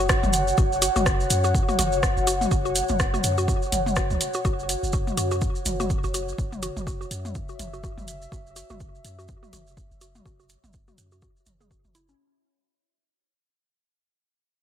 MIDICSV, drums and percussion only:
0, 0, Header, 1, 2, 480
1, 0, Start_track
1, 0, Tempo, 483871
1, 573, Time_signature, 4, 2, 24, 8
1, 14508, End_track
2, 0, Start_track
2, 0, Title_t, "Drums"
2, 90, Note_on_c, 9, 70, 53
2, 93, Note_on_c, 9, 36, 111
2, 93, Note_on_c, 9, 37, 99
2, 189, Note_off_c, 9, 70, 0
2, 192, Note_off_c, 9, 36, 0
2, 192, Note_off_c, 9, 37, 0
2, 232, Note_on_c, 9, 47, 81
2, 232, Note_on_c, 9, 48, 75
2, 233, Note_on_c, 9, 70, 29
2, 327, Note_off_c, 9, 70, 0
2, 327, Note_on_c, 9, 70, 89
2, 331, Note_off_c, 9, 47, 0
2, 331, Note_off_c, 9, 48, 0
2, 333, Note_on_c, 9, 42, 97
2, 426, Note_off_c, 9, 70, 0
2, 432, Note_off_c, 9, 42, 0
2, 474, Note_on_c, 9, 70, 41
2, 571, Note_off_c, 9, 70, 0
2, 571, Note_on_c, 9, 70, 48
2, 573, Note_on_c, 9, 36, 127
2, 671, Note_off_c, 9, 70, 0
2, 672, Note_off_c, 9, 36, 0
2, 718, Note_on_c, 9, 70, 30
2, 813, Note_on_c, 9, 42, 95
2, 815, Note_off_c, 9, 70, 0
2, 815, Note_on_c, 9, 70, 96
2, 912, Note_off_c, 9, 42, 0
2, 914, Note_off_c, 9, 70, 0
2, 952, Note_on_c, 9, 70, 44
2, 953, Note_on_c, 9, 48, 81
2, 1051, Note_off_c, 9, 70, 0
2, 1052, Note_off_c, 9, 48, 0
2, 1053, Note_on_c, 9, 36, 110
2, 1053, Note_on_c, 9, 37, 90
2, 1054, Note_on_c, 9, 70, 60
2, 1152, Note_off_c, 9, 37, 0
2, 1153, Note_off_c, 9, 36, 0
2, 1154, Note_off_c, 9, 70, 0
2, 1193, Note_on_c, 9, 70, 27
2, 1291, Note_off_c, 9, 70, 0
2, 1291, Note_on_c, 9, 70, 92
2, 1293, Note_on_c, 9, 42, 98
2, 1390, Note_off_c, 9, 70, 0
2, 1392, Note_off_c, 9, 42, 0
2, 1428, Note_on_c, 9, 70, 41
2, 1527, Note_off_c, 9, 70, 0
2, 1533, Note_on_c, 9, 36, 127
2, 1536, Note_on_c, 9, 70, 55
2, 1633, Note_off_c, 9, 36, 0
2, 1635, Note_off_c, 9, 70, 0
2, 1673, Note_on_c, 9, 48, 80
2, 1674, Note_on_c, 9, 70, 27
2, 1772, Note_off_c, 9, 48, 0
2, 1773, Note_off_c, 9, 70, 0
2, 1773, Note_on_c, 9, 42, 95
2, 1773, Note_on_c, 9, 47, 81
2, 1786, Note_on_c, 9, 70, 94
2, 1872, Note_off_c, 9, 42, 0
2, 1872, Note_off_c, 9, 47, 0
2, 1885, Note_off_c, 9, 70, 0
2, 1908, Note_on_c, 9, 70, 37
2, 2007, Note_off_c, 9, 70, 0
2, 2013, Note_on_c, 9, 36, 110
2, 2013, Note_on_c, 9, 37, 94
2, 2016, Note_on_c, 9, 70, 55
2, 2112, Note_off_c, 9, 37, 0
2, 2113, Note_off_c, 9, 36, 0
2, 2115, Note_off_c, 9, 70, 0
2, 2155, Note_on_c, 9, 70, 26
2, 2253, Note_on_c, 9, 42, 96
2, 2254, Note_off_c, 9, 70, 0
2, 2256, Note_on_c, 9, 70, 101
2, 2352, Note_off_c, 9, 42, 0
2, 2355, Note_off_c, 9, 70, 0
2, 2393, Note_on_c, 9, 48, 82
2, 2397, Note_on_c, 9, 70, 39
2, 2492, Note_off_c, 9, 48, 0
2, 2493, Note_off_c, 9, 70, 0
2, 2493, Note_on_c, 9, 36, 119
2, 2493, Note_on_c, 9, 70, 51
2, 2592, Note_off_c, 9, 70, 0
2, 2593, Note_off_c, 9, 36, 0
2, 2635, Note_on_c, 9, 70, 30
2, 2732, Note_off_c, 9, 70, 0
2, 2732, Note_on_c, 9, 70, 90
2, 2733, Note_on_c, 9, 42, 96
2, 2831, Note_off_c, 9, 70, 0
2, 2832, Note_off_c, 9, 42, 0
2, 2861, Note_on_c, 9, 70, 41
2, 2873, Note_on_c, 9, 47, 86
2, 2960, Note_off_c, 9, 70, 0
2, 2970, Note_on_c, 9, 70, 53
2, 2972, Note_off_c, 9, 47, 0
2, 2974, Note_on_c, 9, 36, 105
2, 2974, Note_on_c, 9, 37, 91
2, 3070, Note_off_c, 9, 70, 0
2, 3073, Note_off_c, 9, 36, 0
2, 3073, Note_off_c, 9, 37, 0
2, 3112, Note_on_c, 9, 48, 75
2, 3117, Note_on_c, 9, 70, 28
2, 3210, Note_off_c, 9, 70, 0
2, 3210, Note_on_c, 9, 70, 99
2, 3212, Note_off_c, 9, 48, 0
2, 3213, Note_on_c, 9, 42, 90
2, 3310, Note_off_c, 9, 70, 0
2, 3313, Note_off_c, 9, 42, 0
2, 3351, Note_on_c, 9, 70, 43
2, 3450, Note_off_c, 9, 70, 0
2, 3454, Note_on_c, 9, 36, 120
2, 3457, Note_on_c, 9, 70, 51
2, 3553, Note_off_c, 9, 36, 0
2, 3556, Note_off_c, 9, 70, 0
2, 3593, Note_on_c, 9, 70, 25
2, 3692, Note_off_c, 9, 70, 0
2, 3694, Note_on_c, 9, 42, 90
2, 3694, Note_on_c, 9, 47, 80
2, 3700, Note_on_c, 9, 70, 86
2, 3793, Note_off_c, 9, 42, 0
2, 3793, Note_off_c, 9, 47, 0
2, 3799, Note_off_c, 9, 70, 0
2, 3833, Note_on_c, 9, 48, 80
2, 3844, Note_on_c, 9, 70, 36
2, 3927, Note_off_c, 9, 70, 0
2, 3927, Note_on_c, 9, 70, 49
2, 3932, Note_off_c, 9, 48, 0
2, 3933, Note_on_c, 9, 37, 88
2, 3934, Note_on_c, 9, 36, 110
2, 4027, Note_off_c, 9, 70, 0
2, 4033, Note_off_c, 9, 36, 0
2, 4033, Note_off_c, 9, 37, 0
2, 4070, Note_on_c, 9, 70, 26
2, 4073, Note_on_c, 9, 47, 73
2, 4169, Note_off_c, 9, 70, 0
2, 4172, Note_off_c, 9, 47, 0
2, 4174, Note_on_c, 9, 42, 91
2, 4177, Note_on_c, 9, 70, 97
2, 4273, Note_off_c, 9, 42, 0
2, 4276, Note_off_c, 9, 70, 0
2, 4302, Note_on_c, 9, 70, 42
2, 4401, Note_off_c, 9, 70, 0
2, 4413, Note_on_c, 9, 70, 47
2, 4414, Note_on_c, 9, 36, 114
2, 4512, Note_off_c, 9, 70, 0
2, 4513, Note_off_c, 9, 36, 0
2, 4558, Note_on_c, 9, 70, 25
2, 4653, Note_on_c, 9, 42, 91
2, 4657, Note_off_c, 9, 70, 0
2, 4658, Note_on_c, 9, 70, 94
2, 4753, Note_off_c, 9, 42, 0
2, 4757, Note_off_c, 9, 70, 0
2, 4797, Note_on_c, 9, 70, 41
2, 4886, Note_off_c, 9, 70, 0
2, 4886, Note_on_c, 9, 70, 51
2, 4894, Note_on_c, 9, 36, 103
2, 4985, Note_off_c, 9, 70, 0
2, 4993, Note_off_c, 9, 36, 0
2, 5033, Note_on_c, 9, 48, 74
2, 5035, Note_on_c, 9, 70, 25
2, 5132, Note_off_c, 9, 48, 0
2, 5133, Note_on_c, 9, 42, 92
2, 5134, Note_off_c, 9, 70, 0
2, 5135, Note_on_c, 9, 70, 93
2, 5232, Note_off_c, 9, 42, 0
2, 5234, Note_off_c, 9, 70, 0
2, 5271, Note_on_c, 9, 70, 42
2, 5370, Note_off_c, 9, 70, 0
2, 5370, Note_on_c, 9, 70, 53
2, 5373, Note_on_c, 9, 36, 122
2, 5469, Note_off_c, 9, 70, 0
2, 5473, Note_off_c, 9, 36, 0
2, 5509, Note_on_c, 9, 70, 24
2, 5608, Note_off_c, 9, 70, 0
2, 5611, Note_on_c, 9, 70, 89
2, 5614, Note_on_c, 9, 42, 88
2, 5614, Note_on_c, 9, 47, 78
2, 5710, Note_off_c, 9, 70, 0
2, 5713, Note_off_c, 9, 42, 0
2, 5713, Note_off_c, 9, 47, 0
2, 5753, Note_on_c, 9, 48, 78
2, 5754, Note_on_c, 9, 70, 38
2, 5852, Note_off_c, 9, 48, 0
2, 5853, Note_off_c, 9, 70, 0
2, 5853, Note_on_c, 9, 36, 103
2, 5854, Note_on_c, 9, 70, 49
2, 5953, Note_off_c, 9, 36, 0
2, 5953, Note_off_c, 9, 70, 0
2, 5989, Note_on_c, 9, 70, 26
2, 6088, Note_off_c, 9, 70, 0
2, 6093, Note_on_c, 9, 42, 90
2, 6094, Note_on_c, 9, 70, 89
2, 6193, Note_off_c, 9, 42, 0
2, 6193, Note_off_c, 9, 70, 0
2, 6236, Note_on_c, 9, 70, 39
2, 6333, Note_on_c, 9, 36, 103
2, 6335, Note_off_c, 9, 70, 0
2, 6335, Note_on_c, 9, 70, 49
2, 6433, Note_off_c, 9, 36, 0
2, 6434, Note_off_c, 9, 70, 0
2, 6473, Note_on_c, 9, 48, 77
2, 6475, Note_on_c, 9, 70, 24
2, 6572, Note_off_c, 9, 48, 0
2, 6573, Note_off_c, 9, 70, 0
2, 6573, Note_on_c, 9, 42, 86
2, 6573, Note_on_c, 9, 70, 77
2, 6672, Note_off_c, 9, 42, 0
2, 6672, Note_off_c, 9, 70, 0
2, 6713, Note_on_c, 9, 47, 84
2, 6716, Note_on_c, 9, 70, 39
2, 6812, Note_off_c, 9, 47, 0
2, 6813, Note_on_c, 9, 36, 98
2, 6816, Note_off_c, 9, 70, 0
2, 6818, Note_on_c, 9, 70, 55
2, 6913, Note_off_c, 9, 36, 0
2, 6918, Note_off_c, 9, 70, 0
2, 6961, Note_on_c, 9, 70, 25
2, 7053, Note_on_c, 9, 42, 88
2, 7059, Note_off_c, 9, 70, 0
2, 7059, Note_on_c, 9, 70, 94
2, 7153, Note_off_c, 9, 42, 0
2, 7158, Note_off_c, 9, 70, 0
2, 7193, Note_on_c, 9, 48, 75
2, 7195, Note_on_c, 9, 70, 37
2, 7290, Note_off_c, 9, 70, 0
2, 7290, Note_on_c, 9, 70, 49
2, 7292, Note_off_c, 9, 48, 0
2, 7293, Note_on_c, 9, 36, 117
2, 7389, Note_off_c, 9, 70, 0
2, 7393, Note_off_c, 9, 36, 0
2, 7427, Note_on_c, 9, 70, 25
2, 7526, Note_off_c, 9, 70, 0
2, 7534, Note_on_c, 9, 42, 84
2, 7534, Note_on_c, 9, 47, 79
2, 7537, Note_on_c, 9, 70, 88
2, 7633, Note_off_c, 9, 42, 0
2, 7633, Note_off_c, 9, 47, 0
2, 7636, Note_off_c, 9, 70, 0
2, 7673, Note_on_c, 9, 70, 35
2, 7772, Note_off_c, 9, 70, 0
2, 7773, Note_on_c, 9, 36, 100
2, 7774, Note_on_c, 9, 70, 51
2, 7873, Note_off_c, 9, 36, 0
2, 7873, Note_off_c, 9, 70, 0
2, 7913, Note_on_c, 9, 47, 70
2, 7913, Note_on_c, 9, 48, 73
2, 7919, Note_on_c, 9, 70, 25
2, 8012, Note_off_c, 9, 47, 0
2, 8012, Note_off_c, 9, 48, 0
2, 8013, Note_off_c, 9, 70, 0
2, 8013, Note_on_c, 9, 42, 88
2, 8013, Note_on_c, 9, 70, 90
2, 8112, Note_off_c, 9, 70, 0
2, 8113, Note_off_c, 9, 42, 0
2, 8153, Note_on_c, 9, 70, 39
2, 8252, Note_off_c, 9, 70, 0
2, 8253, Note_on_c, 9, 36, 112
2, 8260, Note_on_c, 9, 70, 48
2, 8353, Note_off_c, 9, 36, 0
2, 8359, Note_off_c, 9, 70, 0
2, 8399, Note_on_c, 9, 70, 25
2, 8493, Note_off_c, 9, 70, 0
2, 8493, Note_on_c, 9, 42, 85
2, 8493, Note_on_c, 9, 70, 90
2, 8592, Note_off_c, 9, 70, 0
2, 8593, Note_off_c, 9, 42, 0
2, 8627, Note_on_c, 9, 70, 34
2, 8632, Note_on_c, 9, 48, 69
2, 8726, Note_off_c, 9, 70, 0
2, 8731, Note_on_c, 9, 70, 51
2, 8732, Note_off_c, 9, 48, 0
2, 8733, Note_on_c, 9, 36, 95
2, 8831, Note_off_c, 9, 70, 0
2, 8833, Note_off_c, 9, 36, 0
2, 8880, Note_on_c, 9, 70, 22
2, 8973, Note_on_c, 9, 42, 86
2, 8979, Note_off_c, 9, 70, 0
2, 8979, Note_on_c, 9, 70, 90
2, 9072, Note_off_c, 9, 42, 0
2, 9078, Note_off_c, 9, 70, 0
2, 9118, Note_on_c, 9, 70, 35
2, 9205, Note_off_c, 9, 70, 0
2, 9205, Note_on_c, 9, 70, 46
2, 9213, Note_on_c, 9, 36, 105
2, 9304, Note_off_c, 9, 70, 0
2, 9313, Note_off_c, 9, 36, 0
2, 9353, Note_on_c, 9, 48, 72
2, 9360, Note_on_c, 9, 70, 23
2, 9452, Note_off_c, 9, 48, 0
2, 9453, Note_on_c, 9, 42, 79
2, 9454, Note_on_c, 9, 47, 74
2, 9459, Note_off_c, 9, 70, 0
2, 9459, Note_on_c, 9, 70, 82
2, 9552, Note_off_c, 9, 42, 0
2, 9553, Note_off_c, 9, 47, 0
2, 9558, Note_off_c, 9, 70, 0
2, 9593, Note_on_c, 9, 70, 35
2, 9692, Note_off_c, 9, 70, 0
2, 9693, Note_on_c, 9, 36, 96
2, 9694, Note_on_c, 9, 70, 51
2, 9793, Note_off_c, 9, 36, 0
2, 9793, Note_off_c, 9, 70, 0
2, 9835, Note_on_c, 9, 70, 21
2, 9931, Note_off_c, 9, 70, 0
2, 9931, Note_on_c, 9, 70, 80
2, 9933, Note_on_c, 9, 42, 84
2, 10031, Note_off_c, 9, 70, 0
2, 10032, Note_off_c, 9, 42, 0
2, 10071, Note_on_c, 9, 70, 39
2, 10072, Note_on_c, 9, 48, 69
2, 10170, Note_off_c, 9, 70, 0
2, 10172, Note_off_c, 9, 48, 0
2, 10173, Note_on_c, 9, 36, 110
2, 10179, Note_on_c, 9, 70, 44
2, 10273, Note_off_c, 9, 36, 0
2, 10278, Note_off_c, 9, 70, 0
2, 10314, Note_on_c, 9, 70, 25
2, 10408, Note_off_c, 9, 70, 0
2, 10408, Note_on_c, 9, 70, 83
2, 10413, Note_on_c, 9, 42, 81
2, 10507, Note_off_c, 9, 70, 0
2, 10512, Note_off_c, 9, 42, 0
2, 10552, Note_on_c, 9, 47, 88
2, 10556, Note_on_c, 9, 70, 37
2, 10644, Note_off_c, 9, 70, 0
2, 10644, Note_on_c, 9, 70, 50
2, 10652, Note_off_c, 9, 47, 0
2, 10654, Note_on_c, 9, 36, 93
2, 10743, Note_off_c, 9, 70, 0
2, 10753, Note_off_c, 9, 36, 0
2, 10791, Note_on_c, 9, 70, 23
2, 10793, Note_on_c, 9, 48, 72
2, 10890, Note_off_c, 9, 70, 0
2, 10892, Note_off_c, 9, 48, 0
2, 10893, Note_on_c, 9, 42, 83
2, 10893, Note_on_c, 9, 70, 91
2, 10992, Note_off_c, 9, 70, 0
2, 10993, Note_off_c, 9, 42, 0
2, 11029, Note_on_c, 9, 70, 39
2, 11128, Note_off_c, 9, 70, 0
2, 11129, Note_on_c, 9, 70, 47
2, 11134, Note_on_c, 9, 36, 109
2, 11228, Note_off_c, 9, 70, 0
2, 11233, Note_off_c, 9, 36, 0
2, 11274, Note_on_c, 9, 70, 25
2, 11367, Note_off_c, 9, 70, 0
2, 11367, Note_on_c, 9, 70, 85
2, 11374, Note_on_c, 9, 42, 81
2, 11374, Note_on_c, 9, 47, 75
2, 11467, Note_off_c, 9, 70, 0
2, 11473, Note_off_c, 9, 42, 0
2, 11473, Note_off_c, 9, 47, 0
2, 11513, Note_on_c, 9, 48, 70
2, 11515, Note_on_c, 9, 70, 37
2, 11612, Note_off_c, 9, 48, 0
2, 11614, Note_on_c, 9, 36, 98
2, 11615, Note_off_c, 9, 70, 0
2, 11618, Note_on_c, 9, 70, 45
2, 11713, Note_off_c, 9, 36, 0
2, 11718, Note_off_c, 9, 70, 0
2, 11750, Note_on_c, 9, 70, 23
2, 11753, Note_on_c, 9, 47, 77
2, 11849, Note_off_c, 9, 70, 0
2, 11852, Note_off_c, 9, 47, 0
2, 11854, Note_on_c, 9, 42, 86
2, 11859, Note_on_c, 9, 70, 89
2, 11953, Note_off_c, 9, 42, 0
2, 11958, Note_off_c, 9, 70, 0
2, 11989, Note_on_c, 9, 70, 38
2, 12089, Note_off_c, 9, 70, 0
2, 14508, End_track
0, 0, End_of_file